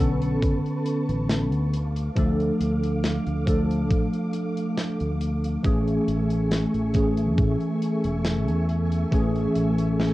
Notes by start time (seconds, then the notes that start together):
Already playing: B1 D3 B4 A5 C#6
0.00 B3 C#4 A4
0.22 closed hi-hat
0.42 F#1, kick, closed hi-hat
0.66 closed hi-hat
0.86 closed hi-hat
1.09 A1, closed hi-hat
1.30 snare, closed hi-hat
1.52 D2, closed hi-hat
1.73 A3 F5 D6, closed hi-hat
1.96 closed hi-hat
2.15 D2 F3 A3 D4 A4, kick, closed hi-hat
2.40 closed hi-hat
2.60 D2, closed hi-hat
2.83 closed hi-hat
3.04 snare, closed hi-hat
3.26 D2, closed hi-hat
3.46 F3 A3 D4 A4, kick, closed hi-hat
3.71 closed hi-hat
3.90 A1, kick, closed hi-hat
4.13 closed hi-hat
4.33 closed hi-hat
4.57 closed hi-hat
4.77 snare, closed hi-hat
5.00 D2, closed hi-hat
5.21 closed hi-hat
5.44 closed hi-hat
5.63 A1 E3 A3 C#4 G#4 E5 G#5 C#6, kick, closed hi-hat
5.88 closed hi-hat
6.08 A1, closed hi-hat
6.30 closed hi-hat
6.51 snare, closed hi-hat
6.74 A1, closed hi-hat
6.93 E3 A3 C#4 G#4, kick, closed hi-hat
7.17 closed hi-hat
7.38 A2, kick, closed hi-hat
7.61 closed hi-hat
7.82 closed hi-hat
8.04 E1, closed hi-hat
8.25 snare, closed hi-hat
8.48 E2, closed hi-hat
8.69 closed hi-hat
8.92 closed hi-hat
9.11 A1 E3 A3 C#4 G#4, kick, closed hi-hat
9.36 closed hi-hat
9.55 A1, closed hi-hat
9.78 closed hi-hat
10.00 snare, closed hi-hat